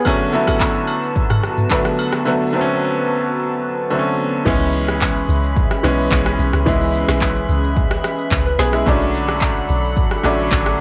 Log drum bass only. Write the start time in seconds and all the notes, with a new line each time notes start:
4.46 C#2
5.29 C#2
5.84 B1
6.11 B1
6.39 B1
6.53 C#2
6.66 C#2
7.08 B1
7.49 C#2
8.31 C#2
8.59 B1
8.87 B1
9.69 B1
10.24 A1
10.52 A1